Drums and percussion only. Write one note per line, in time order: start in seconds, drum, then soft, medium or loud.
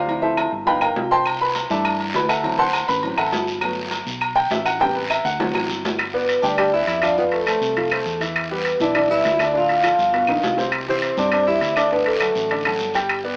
0.09 low agogo medium
0.37 low timbale medium
0.37 low agogo loud
0.37 claves medium
0.67 low agogo medium
0.81 low agogo loud
0.81 claves medium
0.96 low timbale medium
1.26 low agogo loud
1.26 long guiro medium
1.26 claves medium
1.55 low timbale medium
1.55 low agogo medium
1.55 short guiro medium
1.70 short guiro medium
1.85 low agogo loud
1.85 long guiro medium
1.85 claves medium
2.00 low agogo medium
2.14 low timbale medium
2.14 short guiro medium
2.29 low agogo loud
2.29 short guiro medium
2.29 claves medium
2.44 low agogo medium
2.44 long guiro medium
2.73 low timbale medium
2.73 low agogo loud
2.73 short guiro medium
2.73 claves medium
2.89 short guiro medium
3.03 low agogo medium
3.03 long guiro medium
3.18 low agogo loud
3.18 claves medium
3.33 low timbale medium
3.33 short guiro medium
3.47 short guiro medium
3.61 low agogo loud
3.61 long guiro medium
3.61 claves medium
3.91 low timbale medium
3.91 low agogo medium
3.91 short guiro medium
4.07 short guiro medium
4.21 low agogo loud
4.21 long guiro medium
4.21 claves medium
4.37 low agogo medium
4.51 low timbale medium
4.51 short guiro medium
4.66 low agogo loud
4.66 short guiro medium
4.66 claves medium
4.80 high timbale medium
4.80 low agogo medium
4.80 long guiro medium
5.10 low agogo loud
5.10 short guiro medium
5.10 claves medium
5.25 short guiro medium
5.40 low timbale loud
5.40 low agogo medium
5.40 long guiro medium
5.55 low timbale medium
5.55 low agogo loud
5.55 claves medium
5.70 short guiro medium
5.85 low timbale loud
5.85 short guiro medium
5.99 high timbale medium
5.99 long guiro medium
5.99 claves medium
6.29 high timbale medium
6.29 short guiro medium
6.44 short guiro medium
6.58 high timbale medium
6.58 long guiro medium
6.58 claves medium
6.87 high timbale medium
6.87 short guiro medium
7.02 high timbale medium
7.02 short guiro medium
7.02 claves medium
7.18 long guiro medium
7.32 high timbale medium
7.47 high timbale medium
7.47 short guiro medium
7.47 claves medium
7.62 short guiro medium
7.77 high timbale medium
7.77 long guiro medium
7.91 high timbale medium
7.91 claves medium
8.06 short guiro medium
8.21 high timbale medium
8.21 short guiro medium
8.36 high timbale medium
8.36 long guiro medium
8.36 claves medium
8.65 high timbale medium
8.65 short guiro medium
8.80 short guiro medium
8.95 high timbale medium
8.95 long guiro medium
8.95 claves medium
9.25 high timbale medium
9.25 low timbale medium
9.25 short guiro medium
9.39 high timbale medium
9.39 short guiro medium
9.39 claves medium
9.55 long guiro medium
9.69 high timbale medium
9.83 high timbale medium
9.83 short guiro medium
9.83 claves medium
9.99 short guiro medium
10.14 high timbale medium
10.14 long guiro medium
10.27 high timbale medium
10.27 claves medium
10.43 low timbale loud
10.43 short guiro medium
10.58 low timbale medium
10.58 short guiro medium
10.72 high timbale medium
10.72 long guiro medium
10.72 claves medium
11.02 high timbale medium
11.02 short guiro medium
11.17 short guiro medium
11.32 high timbale medium
11.32 long guiro medium
11.32 claves medium
11.61 high timbale medium
11.61 short guiro medium
11.76 high timbale medium
11.76 short guiro medium
11.76 claves medium
11.91 long guiro medium
12.06 high timbale medium
12.20 high timbale medium
12.20 short guiro medium
12.20 claves medium
12.35 short guiro medium
12.50 high timbale medium
12.50 long guiro medium
12.65 high timbale medium
12.65 claves medium
12.79 short guiro medium
12.94 high timbale medium
12.94 short guiro medium
13.09 high timbale medium
13.09 long guiro medium
13.09 claves medium